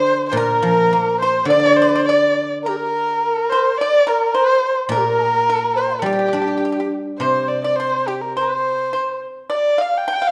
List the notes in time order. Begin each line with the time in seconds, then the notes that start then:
Already playing: D3 C5
0.28 C5
0.33 A#2 A#4
0.37 A#4
0.62 F3
0.93 A#3
1.18 C5
1.22 C5
1.45 D3 D5
1.50 D5
1.60 D5
1.66 D5
1.72 D5
1.76 C5
1.82 D5
1.89 D5
1.95 D5
2.06 D5
2.63 A#4
2.68 G4
2.78 A#4
3.22 A#4
3.49 C5
3.78 D5
4.07 A#4
4.34 C5
4.89 A#2 A#4
4.93 A#4
4.98 G4
5.05 A#4
5.27 G4
5.49 A#4
5.75 C5
5.81 A#5 C6
5.88 F5 G5
5.92 C5 D5
5.98 G3 A#4
6.03 G4
6.13 G4
6.19 G4
6.28 G4
6.33 D4 G4
6.42 G4
6.48 G4
6.58 G4
6.65 G4
6.72 G4
6.80 G4
7.19 C3 C5
7.48 D5
7.64 D5
7.76 C5
8.08 G4
8.21 A#4
8.37 C5
8.93 C5
9.50 D5
9.78 F5
9.98 G5
10.08 G5
10.13 G5
10.22 F5
10.27 F5